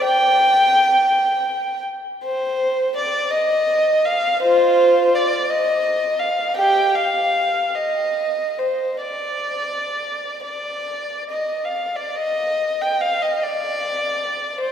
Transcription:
0, 0, Header, 1, 2, 480
1, 0, Start_track
1, 0, Key_signature, -3, "minor"
1, 0, Tempo, 749064
1, 31, Time_signature, 6, 3, 24, 8
1, 509, Tempo, 721154
1, 4349, Tempo, 770218
1, 4829, Tempo, 814111
1, 5309, Tempo, 909091
1, 6269, Tempo, 1006711
1, 6749, Tempo, 1195219
1, 7229, Tempo, 842697
1, 8189, Tempo, 757576
1, 8737, End_track
2, 0, Start_track
2, 0, Title_t, "Violin"
2, 0, Program_c, 0, 40
2, 28, Note_on_c, 0, 79, 79
2, 1197, Note_off_c, 0, 79, 0
2, 1470, Note_on_c, 0, 72, 67
2, 1921, Note_off_c, 0, 72, 0
2, 1950, Note_on_c, 0, 74, 71
2, 2178, Note_on_c, 0, 75, 67
2, 2192, Note_off_c, 0, 74, 0
2, 2668, Note_off_c, 0, 75, 0
2, 2675, Note_on_c, 0, 77, 67
2, 2911, Note_off_c, 0, 77, 0
2, 2921, Note_on_c, 0, 72, 73
2, 2926, Note_on_c, 0, 65, 53
2, 3374, Note_off_c, 0, 65, 0
2, 3389, Note_off_c, 0, 72, 0
2, 3406, Note_on_c, 0, 74, 62
2, 3636, Note_off_c, 0, 74, 0
2, 3640, Note_on_c, 0, 75, 59
2, 4101, Note_on_c, 0, 77, 51
2, 4107, Note_off_c, 0, 75, 0
2, 4341, Note_on_c, 0, 67, 58
2, 4347, Note_off_c, 0, 77, 0
2, 4348, Note_on_c, 0, 79, 65
2, 4565, Note_off_c, 0, 67, 0
2, 4580, Note_off_c, 0, 79, 0
2, 4590, Note_on_c, 0, 77, 55
2, 5066, Note_off_c, 0, 77, 0
2, 5070, Note_on_c, 0, 75, 51
2, 5540, Note_off_c, 0, 75, 0
2, 5541, Note_on_c, 0, 72, 40
2, 5771, Note_on_c, 0, 74, 49
2, 5779, Note_off_c, 0, 72, 0
2, 6480, Note_off_c, 0, 74, 0
2, 6495, Note_on_c, 0, 74, 41
2, 6854, Note_off_c, 0, 74, 0
2, 6879, Note_on_c, 0, 75, 37
2, 7013, Note_off_c, 0, 75, 0
2, 7019, Note_on_c, 0, 77, 38
2, 7139, Note_off_c, 0, 77, 0
2, 7144, Note_on_c, 0, 74, 45
2, 7224, Note_on_c, 0, 75, 62
2, 7234, Note_off_c, 0, 74, 0
2, 7584, Note_off_c, 0, 75, 0
2, 7595, Note_on_c, 0, 79, 54
2, 7706, Note_on_c, 0, 77, 63
2, 7713, Note_off_c, 0, 79, 0
2, 7826, Note_on_c, 0, 75, 54
2, 7830, Note_off_c, 0, 77, 0
2, 7945, Note_on_c, 0, 74, 62
2, 7949, Note_off_c, 0, 75, 0
2, 8665, Note_on_c, 0, 72, 66
2, 8668, Note_off_c, 0, 74, 0
2, 8737, Note_off_c, 0, 72, 0
2, 8737, End_track
0, 0, End_of_file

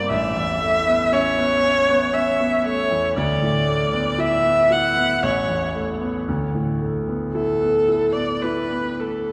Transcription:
0, 0, Header, 1, 3, 480
1, 0, Start_track
1, 0, Tempo, 1013514
1, 47, Time_signature, 3, 2, 24, 8
1, 1007, Tempo, 1036269
1, 2927, Tempo, 1075269
1, 3887, Tempo, 1156069
1, 4261, End_track
2, 0, Start_track
2, 0, Title_t, "Viola"
2, 0, Program_c, 0, 41
2, 0, Note_on_c, 0, 74, 111
2, 50, Note_off_c, 0, 74, 0
2, 52, Note_on_c, 0, 76, 115
2, 533, Note_on_c, 0, 73, 114
2, 540, Note_off_c, 0, 76, 0
2, 1010, Note_on_c, 0, 76, 100
2, 1017, Note_off_c, 0, 73, 0
2, 1246, Note_on_c, 0, 73, 96
2, 1253, Note_off_c, 0, 76, 0
2, 1483, Note_off_c, 0, 73, 0
2, 1486, Note_on_c, 0, 74, 102
2, 1964, Note_on_c, 0, 76, 111
2, 1971, Note_off_c, 0, 74, 0
2, 2207, Note_on_c, 0, 78, 107
2, 2214, Note_off_c, 0, 76, 0
2, 2446, Note_on_c, 0, 73, 92
2, 2453, Note_off_c, 0, 78, 0
2, 2685, Note_off_c, 0, 73, 0
2, 3397, Note_on_c, 0, 69, 91
2, 3754, Note_on_c, 0, 74, 81
2, 3760, Note_off_c, 0, 69, 0
2, 3885, Note_on_c, 0, 71, 76
2, 3891, Note_off_c, 0, 74, 0
2, 4123, Note_on_c, 0, 69, 65
2, 4129, Note_off_c, 0, 71, 0
2, 4261, Note_off_c, 0, 69, 0
2, 4261, End_track
3, 0, Start_track
3, 0, Title_t, "Grand piano"
3, 0, Program_c, 1, 0
3, 0, Control_c, 1, 64, 127
3, 0, Note_on_c, 1, 43, 53
3, 0, Note_on_c, 1, 58, 61
3, 0, Note_on_c, 1, 60, 64
3, 0, Note_on_c, 1, 65, 63
3, 47, Note_on_c, 1, 33, 75
3, 51, Note_off_c, 1, 43, 0
3, 54, Control_c, 1, 64, 0
3, 57, Note_off_c, 1, 58, 0
3, 57, Note_off_c, 1, 60, 0
3, 57, Note_off_c, 1, 65, 0
3, 132, Control_c, 1, 64, 127
3, 171, Note_on_c, 1, 40, 58
3, 292, Note_on_c, 1, 57, 58
3, 363, Note_off_c, 1, 40, 0
3, 412, Note_on_c, 1, 59, 54
3, 483, Note_off_c, 1, 57, 0
3, 531, Note_on_c, 1, 61, 70
3, 602, Note_off_c, 1, 59, 0
3, 656, Note_on_c, 1, 59, 56
3, 721, Note_off_c, 1, 61, 0
3, 773, Note_on_c, 1, 61, 67
3, 843, Note_off_c, 1, 59, 0
3, 897, Note_on_c, 1, 59, 65
3, 962, Note_off_c, 1, 61, 0
3, 1008, Note_on_c, 1, 61, 69
3, 1083, Note_off_c, 1, 59, 0
3, 1134, Note_on_c, 1, 59, 67
3, 1198, Note_off_c, 1, 61, 0
3, 1252, Note_on_c, 1, 57, 57
3, 1322, Note_off_c, 1, 59, 0
3, 1369, Note_on_c, 1, 40, 52
3, 1442, Note_off_c, 1, 57, 0
3, 1469, Note_off_c, 1, 33, 0
3, 1487, Note_on_c, 1, 38, 79
3, 1488, Note_off_c, 1, 40, 0
3, 1493, Control_c, 1, 64, 0
3, 1570, Control_c, 1, 64, 127
3, 1607, Note_on_c, 1, 45, 56
3, 1729, Note_on_c, 1, 57, 56
3, 1798, Note_off_c, 1, 45, 0
3, 1845, Note_on_c, 1, 59, 54
3, 1919, Note_off_c, 1, 57, 0
3, 1960, Note_on_c, 1, 64, 67
3, 2038, Note_off_c, 1, 59, 0
3, 2082, Note_on_c, 1, 59, 54
3, 2157, Note_off_c, 1, 64, 0
3, 2202, Note_on_c, 1, 64, 56
3, 2279, Note_off_c, 1, 59, 0
3, 2323, Note_on_c, 1, 59, 59
3, 2399, Note_off_c, 1, 64, 0
3, 2431, Note_off_c, 1, 38, 0
3, 2445, Note_on_c, 1, 33, 72
3, 2446, Note_off_c, 1, 59, 0
3, 2457, Control_c, 1, 64, 0
3, 2537, Control_c, 1, 64, 127
3, 2563, Note_on_c, 1, 40, 56
3, 2687, Note_on_c, 1, 57, 56
3, 2756, Note_off_c, 1, 40, 0
3, 2805, Note_on_c, 1, 59, 51
3, 2879, Note_off_c, 1, 57, 0
3, 2911, Note_off_c, 1, 33, 0
3, 2927, Note_off_c, 1, 59, 0
3, 2933, Note_on_c, 1, 38, 68
3, 2934, Control_c, 1, 64, 0
3, 3002, Control_c, 1, 64, 127
3, 3050, Note_on_c, 1, 45, 54
3, 3170, Note_on_c, 1, 57, 51
3, 3238, Note_off_c, 1, 45, 0
3, 3290, Note_on_c, 1, 59, 50
3, 3357, Note_off_c, 1, 57, 0
3, 3407, Note_on_c, 1, 64, 55
3, 3476, Note_off_c, 1, 59, 0
3, 3527, Note_on_c, 1, 59, 45
3, 3596, Note_off_c, 1, 64, 0
3, 3646, Note_on_c, 1, 64, 47
3, 3717, Note_off_c, 1, 59, 0
3, 3768, Note_on_c, 1, 59, 49
3, 3840, Note_off_c, 1, 64, 0
3, 3895, Note_on_c, 1, 64, 48
3, 3960, Note_off_c, 1, 59, 0
3, 4007, Note_on_c, 1, 59, 49
3, 4081, Note_off_c, 1, 64, 0
3, 4136, Note_on_c, 1, 57, 42
3, 4199, Note_off_c, 1, 59, 0
3, 4261, Note_off_c, 1, 38, 0
3, 4261, Note_off_c, 1, 57, 0
3, 4261, End_track
0, 0, End_of_file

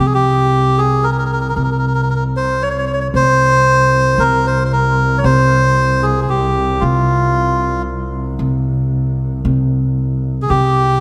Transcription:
0, 0, Header, 1, 4, 480
1, 0, Start_track
1, 0, Tempo, 1050788
1, 2395, Time_signature, 10, 3, 24, 8
1, 5026, End_track
2, 0, Start_track
2, 0, Title_t, "Melodica"
2, 0, Program_c, 0, 22
2, 28, Note_on_c, 0, 68, 70
2, 60, Note_off_c, 0, 68, 0
2, 65, Note_on_c, 0, 67, 92
2, 356, Note_on_c, 0, 68, 75
2, 367, Note_off_c, 0, 67, 0
2, 473, Note_on_c, 0, 70, 84
2, 480, Note_off_c, 0, 68, 0
2, 504, Note_off_c, 0, 70, 0
2, 511, Note_on_c, 0, 70, 61
2, 534, Note_off_c, 0, 70, 0
2, 541, Note_on_c, 0, 70, 69
2, 567, Note_off_c, 0, 70, 0
2, 574, Note_on_c, 0, 70, 55
2, 600, Note_off_c, 0, 70, 0
2, 607, Note_on_c, 0, 70, 67
2, 634, Note_off_c, 0, 70, 0
2, 641, Note_on_c, 0, 70, 56
2, 674, Note_off_c, 0, 70, 0
2, 680, Note_on_c, 0, 70, 65
2, 704, Note_off_c, 0, 70, 0
2, 711, Note_on_c, 0, 70, 54
2, 741, Note_off_c, 0, 70, 0
2, 748, Note_on_c, 0, 70, 61
2, 776, Note_off_c, 0, 70, 0
2, 783, Note_on_c, 0, 70, 50
2, 810, Note_off_c, 0, 70, 0
2, 816, Note_on_c, 0, 70, 54
2, 848, Note_off_c, 0, 70, 0
2, 854, Note_on_c, 0, 70, 53
2, 882, Note_off_c, 0, 70, 0
2, 888, Note_on_c, 0, 70, 65
2, 919, Note_off_c, 0, 70, 0
2, 926, Note_on_c, 0, 70, 53
2, 952, Note_off_c, 0, 70, 0
2, 959, Note_on_c, 0, 70, 66
2, 978, Note_off_c, 0, 70, 0
2, 985, Note_on_c, 0, 70, 57
2, 1022, Note_off_c, 0, 70, 0
2, 1080, Note_on_c, 0, 72, 78
2, 1199, Note_on_c, 0, 73, 77
2, 1201, Note_off_c, 0, 72, 0
2, 1229, Note_off_c, 0, 73, 0
2, 1236, Note_on_c, 0, 73, 61
2, 1265, Note_off_c, 0, 73, 0
2, 1272, Note_on_c, 0, 73, 67
2, 1303, Note_off_c, 0, 73, 0
2, 1310, Note_on_c, 0, 73, 62
2, 1334, Note_off_c, 0, 73, 0
2, 1341, Note_on_c, 0, 73, 71
2, 1367, Note_off_c, 0, 73, 0
2, 1374, Note_on_c, 0, 73, 62
2, 1405, Note_off_c, 0, 73, 0
2, 1441, Note_on_c, 0, 72, 103
2, 1916, Note_on_c, 0, 70, 96
2, 1932, Note_off_c, 0, 72, 0
2, 2039, Note_off_c, 0, 70, 0
2, 2041, Note_on_c, 0, 72, 83
2, 2117, Note_off_c, 0, 72, 0
2, 2124, Note_on_c, 0, 72, 62
2, 2155, Note_off_c, 0, 72, 0
2, 2158, Note_on_c, 0, 70, 86
2, 2367, Note_on_c, 0, 73, 69
2, 2371, Note_off_c, 0, 70, 0
2, 2397, Note_off_c, 0, 73, 0
2, 2397, Note_on_c, 0, 72, 96
2, 2753, Note_on_c, 0, 68, 74
2, 2767, Note_off_c, 0, 72, 0
2, 2834, Note_off_c, 0, 68, 0
2, 2841, Note_on_c, 0, 68, 55
2, 2874, Note_off_c, 0, 68, 0
2, 2875, Note_on_c, 0, 67, 78
2, 3108, Note_on_c, 0, 65, 72
2, 3122, Note_off_c, 0, 67, 0
2, 3574, Note_off_c, 0, 65, 0
2, 4760, Note_on_c, 0, 68, 64
2, 4793, Note_on_c, 0, 67, 86
2, 4794, Note_off_c, 0, 68, 0
2, 5026, Note_off_c, 0, 67, 0
2, 5026, End_track
3, 0, Start_track
3, 0, Title_t, "Upright bass"
3, 0, Program_c, 1, 32
3, 0, Note_on_c, 1, 48, 94
3, 695, Note_off_c, 1, 48, 0
3, 714, Note_on_c, 1, 48, 76
3, 1416, Note_off_c, 1, 48, 0
3, 1433, Note_on_c, 1, 48, 80
3, 1896, Note_off_c, 1, 48, 0
3, 1910, Note_on_c, 1, 48, 88
3, 2374, Note_off_c, 1, 48, 0
3, 2394, Note_on_c, 1, 48, 96
3, 3096, Note_off_c, 1, 48, 0
3, 3115, Note_on_c, 1, 48, 81
3, 3817, Note_off_c, 1, 48, 0
3, 3833, Note_on_c, 1, 48, 83
3, 4296, Note_off_c, 1, 48, 0
3, 4316, Note_on_c, 1, 48, 91
3, 4778, Note_off_c, 1, 48, 0
3, 4796, Note_on_c, 1, 48, 92
3, 5026, Note_off_c, 1, 48, 0
3, 5026, End_track
4, 0, Start_track
4, 0, Title_t, "Double bass"
4, 0, Program_c, 2, 43
4, 1, Note_on_c, 2, 36, 62
4, 4793, Note_off_c, 2, 36, 0
4, 4795, Note_on_c, 2, 36, 66
4, 5026, Note_off_c, 2, 36, 0
4, 5026, End_track
0, 0, End_of_file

